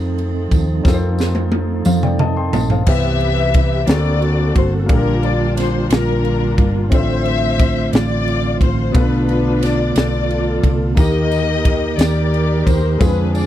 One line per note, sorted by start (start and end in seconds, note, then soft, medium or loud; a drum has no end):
0.00 0.47 F2 medium
0.00 2.83 D#3 medium
0.00 2.83 F3 medium
0.00 2.83 A3 medium
0.00 0.80 C4 medium
0.00 2.83 C4 medium
0.00 0.81 D#4 medium
0.00 2.83 D#4 medium
0.00 0.81 F4 medium
0.00 0.82 A4 soft
0.00 2.83 A4 medium
0.00 0.82 C5 medium
0.18 ride soft
0.51 0.82 D#2 medium
0.51 kick medium
0.51 ride soft
0.51 tambourine medium
0.83 1.82 F2 loud
0.83 2.82 C4 medium
0.83 2.83 D#4 medium
0.83 2.83 F4 medium
0.83 2.84 A4 medium
0.83 kick loud
0.83 snare medium
0.83 tambourine soft
0.88 0.93 A#4 medium
0.94 1.85 C5 medium
1.19 snare medium
1.19 tambourine medium
1.35 high tom medium
1.52 high tom medium
1.85 2.49 F2 medium
1.85 2.02 C5 soft
1.85 2.02 F5 medium
1.85 mid tom medium
1.85 tambourine medium
2.03 2.19 D5 medium
2.03 2.19 G5 medium
2.03 mid tom medium
2.19 2.36 D#5 medium
2.19 2.36 A5 medium
2.19 mid tom medium
2.37 2.53 G5 medium
2.37 2.53 C6 medium
2.53 2.84 A#1 medium
2.53 2.69 D#5 soft
2.53 2.69 A5 medium
2.53 floor tom medium
2.53 tambourine medium
2.70 3.03 C5 soft
2.70 3.02 F5 medium
2.70 floor tom medium
2.86 3.84 C2 loud
2.86 3.87 C3 medium
2.86 3.84 C3 medium
2.86 3.87 E3 medium
2.86 3.88 B3 medium
2.86 3.86 C4 soft
2.86 3.88 E4 medium
2.86 3.88 G4 soft
2.86 3.88 G4 medium
2.86 3.86 G4 medium
2.86 3.88 B4 medium
2.86 3.89 B4 medium
2.86 3.85 B4 medium
2.86 3.85 E5 loud
2.86 kick loud
2.86 crash loud
3.20 ride soft
3.54 kick loud
3.54 ride medium
3.87 4.51 D2 loud
3.87 4.85 D3 medium
3.87 6.89 D3 medium
3.87 4.85 A#3 medium
3.87 6.89 A#3 medium
3.87 4.89 C4 medium
3.87 4.89 C4 soft
3.87 4.86 D4 medium
3.87 4.90 F#4 medium
3.87 4.89 F#4 medium
3.87 4.86 F#4 medium
3.87 3.95 G#4 medium
3.87 4.56 D5 loud
3.87 snare loud
3.87 ride medium
3.91 4.87 A4 medium
3.96 4.89 A4 medium
4.22 ride soft
4.55 4.86 G1 medium
4.55 4.73 C5 medium
4.55 kick medium
4.55 ride medium
4.86 5.86 A#1 loud
4.86 5.86 A#2 medium
4.86 6.86 A#3 medium
4.86 6.87 D4 medium
4.86 6.87 F4 medium
4.86 6.88 G4 medium
4.86 kick loud
4.86 ride medium
4.91 6.91 G3 medium
4.91 5.89 D4 medium
4.91 10.95 F4 medium
4.91 5.88 F4 medium
4.91 4.96 A4 medium
4.91 5.22 A#4 medium
4.97 6.92 A#4 medium
5.23 5.58 D5 medium
5.23 ride soft
5.57 5.89 C5 medium
5.57 snare soft
5.57 ride medium
5.90 6.54 A#1 loud
5.90 6.68 A#4 loud
5.90 snare loud
5.90 ride medium
5.95 6.90 D4 medium
5.95 6.90 F4 medium
6.25 ride soft
6.58 6.89 G1 medium
6.58 kick loud
6.58 ride soft
6.90 7.89 A1 loud
6.90 7.89 A2 medium
6.90 10.93 D3 medium
6.90 10.93 A3 medium
6.90 8.90 C4 medium
6.90 8.92 C4 medium
6.90 8.90 D4 medium
6.90 6.98 E4 soft
6.90 8.91 A4 medium
6.90 7.90 E5 loud
6.90 kick loud
6.90 ride medium
6.94 8.92 C5 medium
6.94 7.91 C5 medium
6.99 8.93 F4 medium
7.25 ride soft
7.59 kick medium
7.59 ride medium
7.93 8.57 A1 loud
7.93 8.92 F4 medium
7.93 8.57 D5 loud
7.93 snare loud
7.93 ride medium
8.28 ride soft
8.61 8.92 A1 loud
8.61 8.93 C5 medium
8.61 kick medium
8.61 ride medium
8.92 9.92 B1 loud
8.92 9.92 B2 medium
8.92 10.93 B3 medium
8.92 10.96 B3 medium
8.92 9.00 C4 soft
8.92 10.94 F4 medium
8.92 10.94 A4 medium
8.92 9.27 B4 loud
8.92 10.95 B4 medium
8.92 kick loud
8.92 ride medium
8.98 9.94 D4 medium
8.98 10.96 D4 medium
8.98 9.94 F4 medium
9.29 9.60 B4 medium
9.29 ride soft
9.62 9.95 D5 medium
9.62 snare soft
9.62 ride medium
9.96 10.60 B1 medium
9.96 10.95 A4 medium
9.96 10.68 D5 medium
9.96 snare loud
9.96 ride medium
10.00 10.96 F4 medium
10.31 ride soft
10.63 10.95 C2 medium
10.63 kick loud
10.63 ride medium
10.95 11.95 D#2 medium
10.95 12.99 D#3 medium
10.95 11.95 D#3 medium
10.95 12.96 A#3 medium
10.95 12.99 A#3 medium
10.95 12.97 D#4 soft
10.95 12.99 D#4 medium
10.95 12.99 G4 medium
10.95 12.97 G4 medium
10.95 11.95 D#5 loud
10.95 kick loud
10.95 ride medium
10.95 tambourine soft
10.99 11.97 G4 medium
10.99 12.98 A#4 medium
10.99 11.97 A#4 medium
11.31 ride soft
11.31 tambourine soft
11.65 kick medium
11.65 ride medium
11.98 12.62 D#2 loud
11.98 12.98 G4 medium
11.98 12.98 A#4 medium
11.98 12.67 D5 medium
11.98 snare loud
11.98 ride medium
11.98 tambourine medium
12.34 ride soft
12.67 12.98 D#2 medium
12.67 13.01 C5 medium
12.67 kick medium
12.67 ride medium
12.67 tambourine medium
12.98 13.46 F2 medium
12.98 13.46 D3 medium
12.98 13.46 G#3 medium
12.98 13.46 C4 medium
12.98 13.46 D4 medium
12.98 13.46 F4 medium
12.98 13.46 G#4 medium
12.98 13.35 B4 loud
12.98 kick loud
12.98 ride medium
12.98 tambourine medium
13.03 13.46 D4 medium
13.03 13.46 G#4 medium
13.35 13.46 D5 medium
13.35 ride soft
13.35 tambourine medium